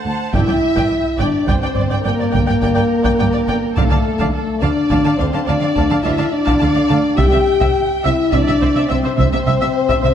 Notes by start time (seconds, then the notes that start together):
0.05 D2 C5 F#5 A5
0.33 G1 G2 E4 D5 E5 G5, taiko
0.47 G2 D5 G5
0.76 G2 D5 G5, taiko
1.19 G1 G2 D4 D5 G5
1.48 G1 G2 C4 C5 D5 G5, taiko
1.62 G2 D5 G5
1.75 G1 G2 D5
1.90 G2 D5 G5
2.04 G1 G2 A#3 A#4 D5 G5
2.20 G2 D5
2.31 G1 G2 D5 G5, taiko
2.47 G2 D5 G5
2.62 G1 G2 D5 G5
2.75 G2 D5 G5
3.05 G2 D5 G5, taiko
3.19 G1 G2 D5 G5
3.33 G2 D5
3.48 G1 G2 D5 G5
3.76 D2 D3 A3 A4 D5 F5 A5, taiko
3.90 D3 D5 F5 A5
4.18 D3 D5 F5 A5, taiko
4.33 A3 A4
4.62 D2 D3 D4 D5 F5 A5
4.90 D2 D3 D5 F5 A5, taiko
5.05 D3 D5 F5 A5
5.18 D2 D3 C4 C5 D5 F5
5.33 D3 D5 F5 A5
5.47 D2 D3 D4 D5 F5 A5
5.61 D3 D5 F5
5.76 D2 D3 D5 F5 A5, taiko
5.90 D3 D5 F5 A5
6.03 D2 D3 E4 D5 E5 F5 A5
6.17 D3 D5 F5 A5
6.32 D4 D5
6.46 D3 D5 F5 A5, taiko
6.59 D2 D3 D5 F5 A5
6.75 D3 D5 F5
6.88 D2 D3 D5 F5 A5
7.17 C2 C3 G4 E5 G5, taiko
7.31 C3 E5
7.61 C3 E5, taiko
8.04 C2 C3 E4 E5
8.32 C2 C3 D4 D5 E5, taiko
8.48 C3 E5
8.61 C2 C3 C5 E5
8.75 C3 E5
8.87 C2 C4 C5 E5
8.92 C3
9.04 C3 C5 E5
9.17 C2 C3 E5, taiko
9.32 C3 E5
9.47 C2 C3 E5
9.61 C3 E5
9.89 C3 E5, taiko
10.03 C2 C3 E5